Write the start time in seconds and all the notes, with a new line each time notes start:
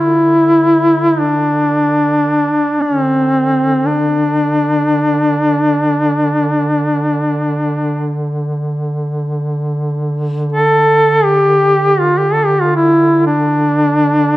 Already playing: D3
0.00 E4
1.20 D4
2.81 C#4
2.86 D3
3.00 C4
3.86 D4
10.52 A4
11.25 G4
12.00 F4
12.18 G4
12.33 A4
12.46 G4
12.60 F4
12.76 E4
13.27 D4